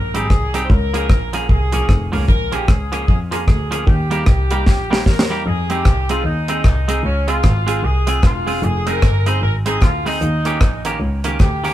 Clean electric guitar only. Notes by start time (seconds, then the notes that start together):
0.14 G3 C4 D#4 G4
0.54 G3 C4 D#4 G4
0.94 F3 A#3 C#4 G#4
1.33 F3 A#3 C#4 G#4
1.72 F3 A#3 C#4 G#4
2.12 F3 A#3 C#4 G#4
2.52 F3 A#3 C#4 G#4
2.92 F3 A#3 C#4 G#4
3.31 F3 A#3 C#4 G#4
3.71 F3 A#3 C#4 G#4
4.11 G3 A#3 D#4 G4
4.51 G3 A#3 D#4 G4
4.90 G3 A#3 D#4 G4
5.30 G3 A#3 D#4 G4
5.70 G#3 C4 D#4 G#4
6.09 G#3 C4 D#4 G#4
6.49 G#3 C4 D#4 G#4
6.88 G#3 C4 D#4 G#4
7.28 G#3 C4 F4 G#4
7.67 G#3 C4 F4 G#4
8.07 G#3 C4 F4 G#4
8.47 G#3 C4 F4 G#4
8.87 G#3 C4 D#4 G#4
9.26 G#3 C4 D#4 G#4
9.66 G#3 C4 D#4 G#4
10.06 G#3 C4 D#4 G#4
10.45 D#3 A#3 C#4 G4
10.85 D#3 A#3 C#4 G4
11.24 D#3 A#3 C#4 G4
11.64 D#3 A#3 C#4 G4